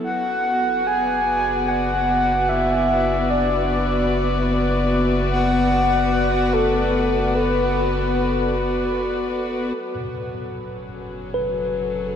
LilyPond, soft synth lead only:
\new Staff \with { instrumentName = "Soft synth lead" } { \time 3/4 \key b \dorian \tempo 4 = 74 fis''4 gis''4 fis''4 | e''4 d''4 r4 | r8 fis''4. a'4 | b'2 r4 |
r2. | }